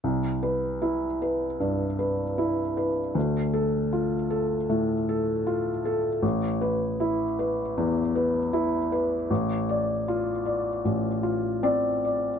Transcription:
\new Staff \with { instrumentName = "Felt piano" } { \time 4/4 \key c \major \tempo 4 = 78 << { r1 | r1 | r1 | r2. d''4 | } \\ { c,8 b'8 e'8 b'8 g,8 b'8 e'8 b'8 | d,8 a'8 f'8 a'8 a,8 a'8 f'8 a'8 | a,,8 b'8 e'8 b'8 e,8 b'8 e'8 b'8 | a,,8 d''8 f'8 d''8 a,,8 f'8 c'8 d''8 | } >> }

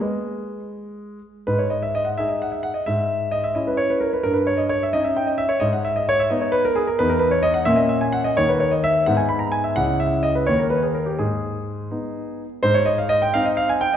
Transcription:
<<
  \new Staff \with { instrumentName = "Grand piano" } { \time 6/8 \key gis \minor \tempo 4. = 86 gis2~ gis8 r8 | b'16 cis''16 dis''16 e''16 dis''16 fis''16 e''16 dis''16 fis''16 e''16 fis''16 dis''16 | e''4 dis''16 e''16 dis''16 b'16 cis''16 b'16 ais'16 b'16 | ais'16 b'16 cis''16 dis''16 cis''16 e''16 dis''16 e''16 g''16 dis''16 e''16 cis''16 |
dis''16 fis''16 e''16 dis''16 cis''16 e''16 dis''16 cis''16 b'16 ais'16 gis'16 ais'16 | b'16 ais'16 b'16 cis''16 dis''16 fis''16 e''16 dis''16 e''16 gis''16 fis''16 dis''16 | cis''16 b'16 cis''16 dis''16 e''8 fis''16 gis''16 b''16 ais''16 gis''16 e''16 | fis''8 e''8 dis''16 b'16 cis''16 ais'16 b'16 gis'16 ais'16 g'16 |
gis'2~ gis'8 r8 | \key aes \major c''16 des''16 ees''16 f''16 ees''16 g''16 f''16 ees''16 f''16 aes''16 g''16 ees''16 | }
  \new Staff \with { instrumentName = "Grand piano" } { \time 6/8 \key gis \minor <b' dis''>4. r4. | gis,4. <dis' gis'>4. | gis,4. <cis' e'>4. | g,4. <cis' dis'>4. |
gis,4. <b dis'>4. | <e, b dis'>4. <ais, ais cis'>4. | <dis, ais dis'>4. <gis, b dis'>4. | <cis, cis' e'>4. <dis, ais dis'>4. |
gis,4. <b dis'>4. | \key aes \major aes,4. <c' ees'>4. | }
>>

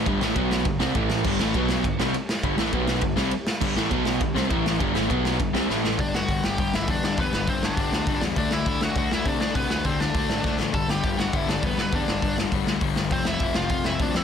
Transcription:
<<
  \new Staff \with { instrumentName = "Lead electric guitar" } { \time 4/4 \key g \major \tempo 4 = 202 r1 | r1 | r1 | r1 |
r1 | <d' d''>8 <fis' fis''>4 <g' g''>8 <g' g''>8 <e' e''>8 <d' d''>8 <d' d''>8 | <b b'>8 <b b'>8 <c' c''>8 <d' d''>2 r8 | <d' d''>8 <e' e''>4 <fis' fis''>8 <fis' fis''>8 <e' e''>8 <d' d''>8 <d' d''>8 |
<b b'>8 <b b'>8 <c' c''>8 <d' d''>2 r8 | <a' a''>8 <g' g''>4 <fis' fis''>8 <e' e''>8 <d' d''>8 <b b'>8 <b b'>8 | <d' d''>4. r2 r8 | <c' c''>8 <e' e''>4 <f' f''>8 <f' f''>8 <e' e''>8 <d' d''>8 <e' e''>8 | }
  \new Staff \with { instrumentName = "Overdriven electric guitar" } { \clef bass \time 4/4 \key g \major <g, d g>8 <a, e a>8 <b, fis b>4 <g, d>8 <c g c'>8 <a, e a>4 | <g, d g>8 <a, e a>8 <b, fis b>4 <g, d>8 <c g c'>8 r4 | <g, d g>8 <a, e a>8 <b, fis b>4 <g, d>8 <c g c'>8 r4 | <g, d g>8 <a, e a>8 <b, fis b>4 <g, d>8 <c g c'>8 <a, e a>4 |
<g, d g>8 <a, e a>8 <b, fis b>4 <g, d>8 <c g c'>8 <a, e a>4 | r1 | r1 | r1 |
r1 | r1 | r1 | r1 | }
  \new Staff \with { instrumentName = "Overdriven electric guitar" } { \clef bass \time 4/4 \key g \major <g, d g>8 <a, e a>8 <b, fis b>4 <g, d>8 <c g c'>8 <a, e a>4 | <g, d g>8 <a, e a>8 <b, fis b>4 <g, d>8 <c g c'>8 r4 | <g, d g>8 <a, e a>8 <b, fis b>4 <g, d>8 <c g c'>8 r4 | <g, d g>8 <a, e a>8 <b, fis b>4 <g, d>8 <c g c'>8 <a, e a>4 |
<g, d g>8 <a, e a>8 <b, fis b>4 <g, d>8 <c g c'>8 <a, e a>4 | r1 | r1 | r1 |
r1 | r1 | r1 | r1 | }
  \new Staff \with { instrumentName = "Overdriven electric guitar" } { \clef bass \time 4/4 \key g \major <g, d g>8 <a, e a>8 <b, fis b>4 <g, d>8 <c g c'>8 <a, e a>4 | <g, d g>8 <a, e a>8 <b, fis b>4 <g, d>8 <c g c'>8 r4 | <g, d g>8 <a, e a>8 <b, fis b>4 <g, d>8 <c g c'>8 r4 | <g, d g>8 <a, e a>8 <b, fis b>4 <g, d>8 <c g c'>8 <a, e a>4 |
<g, d g>8 <a, e a>8 <b, fis b>4 <g, d>8 <c g c'>8 <a, e a>4 | <g, d g>4 <g, d g>4 <g, d g>4 <g, d g>4 | <g, d g>4 <g, d g>4 <g, d g>4 <g, d g>4 | <d a d'>4 <d a d'>4 <d a d'>4 <d a d'>4 |
<d a d'>4 <d a d'>4 <d a d'>4 <d a d'>4 | <g, d g>4 <g, d g>4 <g, d g>4 <g, d g>4 | <g, d g>4 <g, d g>4 <g, d g>4 <g, d g>4 | <f, c f>4 <f, c f>4 <f, c f>4 <f, c f>4 | }
  \new Staff \with { instrumentName = "Picked electric bass" } { \clef bass \time 4/4 \key g \major g,,8 a,,8 b,,4 g,,8 c,8 a,,4 | g,,8 a,,8 b,,4 g,,8 c,8 r4 | g,,8 a,,8 b,,4 g,,8 c,8 r4 | g,,8 a,,8 b,,4 g,,8 c,8 a,,4 |
g,,8 a,,8 b,,4 g,,8 c,8 a,,4 | g,,8 g,,8 g,,8 g,,8 g,,8 g,,8 e,8 g,8 | e,8 g,,8 g,,4 g,,8 d,8 g,,8 e,8 | d,8 d,8 d,8 d,8 d,8 d,8 c8 d8 |
c8 d,8 d,4 d,8 a,8 d,8 a,,8 | g,,8 g,,8 g,,8 g,,8 g,,8 g,,8 e,8 g,8 | e,8 g,,8 g,,4 g,,8 d,8 g,,8 g,,8 | f,,8 f,,8 f,,8 f,,8 f,,8 f,,8 d,8 f,8 | }
  \new DrumStaff \with { instrumentName = "Drums" } \drummode { \time 4/4 <bd cymr>8 sn8 <bd cymr>8 sn8 <bd cymr>8 sn8 <bd cymr>8 sn8 | <cymc bd>8 sn8 <bd cymr>8 sn8 <bd cymr>8 sn8 cymr8 sn8 | <bd cymr>8 sn8 <bd cymr>8 sn8 <bd cymr>8 sn8 cymr8 sn8 | <cymc bd>8 sn8 <bd cymr>8 sn8 <bd cymr>8 sn8 <bd cymr>8 sn8 |
<bd cymr>8 sn8 <bd cymr>8 sn8 <bd cymr>8 sn8 sn8 sn8 | <hho bd>8 sn8 <hho bd>8 sn8 <hho bd>8 sn8 <hho bd>8 sn8 | <hho bd>8 sn8 <hho bd>8 sn8 <hho bd>8 sn8 <hho bd>8 sn8 | <hho bd>8 sn8 <hho bd>8 sn8 <hho bd>8 sn8 <hho bd>8 sn8 |
<hho bd>8 sn8 <hho bd>8 sn8 <hho bd>8 sn8 <bd sn>8 sn8 | <hho bd>8 sn8 <hho bd>8 sn8 <hho bd>8 sn8 <hho bd>8 sn8 | <hho bd>8 sn8 <hho bd>8 sn8 <hho bd>8 sn8 <hho bd>8 sn8 | <hho bd>8 sn8 <hho bd>8 sn8 <hho bd>8 sn8 <hho bd>8 sn8 | }
>>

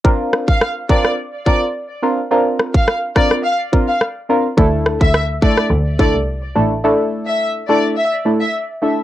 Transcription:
<<
  \new Staff \with { instrumentName = "Violin section" } { \time 4/4 \key bes \lydian \tempo 4 = 106 r8. f''8 r16 d''8 r8 d''16 r4 r16 | r8. f''8 r16 d''8 f''16 r8 f''16 r4 | r8. e''8 r16 d''8 r8 d''16 r4 r16 | r8. e''8 r16 d''8 e''16 r8 e''16 r4 | }
  \new Staff \with { instrumentName = "Synth stab" } { \time 4/4 \key bes \lydian <c' d' f' bes'>4. <c' d' f' bes'>8 r8 <c' d' f' bes'>8 r8 <c' d' f' bes'>8 | <c' d' f' bes'>4. <c' d' f' bes'>8 r8 <c' d' f' bes'>8 r8 <c' d' f' bes'>8 | <a d' e' a'>4. <a d' e' a'>8 r8 <a d' e' a'>8 r8 <a d' e' a'>8 | <a d' e' a'>4. <a d' e' a'>8 r8 <a d' e' a'>8 r8 <a d' e' a'>8 | }
  \new Staff \with { instrumentName = "Double bass" } { \clef bass \time 4/4 \key bes \lydian r1 | r1 | d,8. d,8. r8 d,8. c,16 r8 a,,8 | r1 | }
  \new DrumStaff \with { instrumentName = "Drums" } \drummode { \time 4/4 bd8 ss16 bd16 ss8 bd16 ss16 r8 bd8 r4 | r8 ss16 bd16 ss8 <bd ss>16 ss16 r8 bd8 ss4 | bd8 ss16 bd16 ss8 bd16 ss16 r8 bd8 r4 | r4 r4 r4 r4 | }
>>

